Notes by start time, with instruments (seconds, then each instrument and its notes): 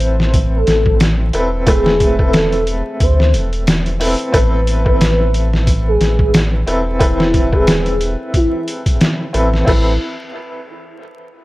Already playing: sub bass A1, upright piano C4 E4 A4 B4 C5
0.00 closed hi-hat
0.20 snare
0.34 kick, closed hi-hat
0.56 soft synth lead A4
0.67 sub bass A1, snare, closed hi-hat
0.86 kick
1.00 snare, closed hi-hat
1.33 sub bass E1, upright piano C4 E4 A4 B4, closed hi-hat
1.66 upright piano A3 C4 E4 B4, soft synth lead G#4, kick, closed hi-hat
1.86 snare
2.00 kick, closed hi-hat
2.18 upright piano C4 E4 A4 B4, soft synth lead A4, kick
2.33 snare, closed hi-hat
2.52 closed hi-hat
2.67 closed hi-hat
3.00 sub bass D2, soft synth lead C5, kick, closed hi-hat
3.20 snare
3.33 sub bass E1, closed hi-hat
3.53 closed hi-hat
3.67 snare, closed hi-hat
3.86 closed hi-hat
4.00 upright piano C4 E4 A4 B4, open hi-hat
4.19 closed hi-hat
4.33 sub bass A1, upright piano C4 E4 A4 B4, soft synth lead B4, kick, closed hi-hat
4.67 closed hi-hat
4.85 upright piano C4 E4 A4 B4, soft synth lead B4, kick
5.01 snare, closed hi-hat
5.34 closed hi-hat
5.53 snare
5.67 kick, closed hi-hat
5.88 soft synth lead G#4
6.00 sub bass A1, snare, closed hi-hat
6.19 kick
6.34 snare, closed hi-hat
6.67 sub bass E1, upright piano C4 E4 A4 B4, closed hi-hat
6.99 upright piano C4 E4 A4 B4, soft synth lead E4, kick, closed hi-hat
7.20 snare
7.34 kick, closed hi-hat
7.52 upright piano C4 E4 A4 B4, soft synth lead G#4, kick
7.67 snare, closed hi-hat
7.86 closed hi-hat
8.01 closed hi-hat
8.34 soft synth lead E4, kick, closed hi-hat
8.68 closed hi-hat
8.86 kick, closed hi-hat
9.01 snare, closed hi-hat
9.33 sub bass A1, upright piano C4 E4 A4 B4, closed hi-hat
9.54 snare
9.65 sub bass A1, upright piano C4 E4 A4, kick, crash
9.69 soft synth lead E4, upright piano B4